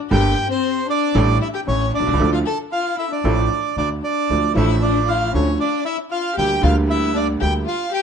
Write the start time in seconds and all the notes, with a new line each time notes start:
0.11 G1 G2 G3 A#3 D4 G4 A4 G5
0.50 C4 C5
0.88 D4 D5
1.15 A1 A2 G3 D4 E4 A4
1.41 E4 E5
1.54 G4 G5
1.67 A1 A2 C#4 C#5
1.93 D4 D5
2.00 B1
2.07 C2
2.13 C#2
2.19 D2 D3 F3 D4 E4 A4
2.32 F4 F5
2.45 A4 A5
2.72 F4 F5
2.97 E4 E5
3.11 D4 D5
3.24 A1 A2 F3 D4 E4 A4
3.77 D2 D3 D4 D5
4.03 D4 D5
4.30 D2 D3 F3 A3 D4 A4
4.54 A1 A2 F3 A3 D4 E4 E5
4.58 A4
4.82 D4 D5
5.08 F4 F5
5.34 D2 D3 F3 A3 C#4 D4 A4 C#5
5.59 D4 D5
5.85 E4 E5
6.11 F4 F5
6.36 D2 D3 G3 A#3 G4 G5
6.63 D2 D3 G3 A#3 F4 G4 F5
6.89 E4 E5
7.14 D4 D5
7.40 D2 D3 G3 A#3 G4 G5
7.66 F4 F5
7.93 G4 G5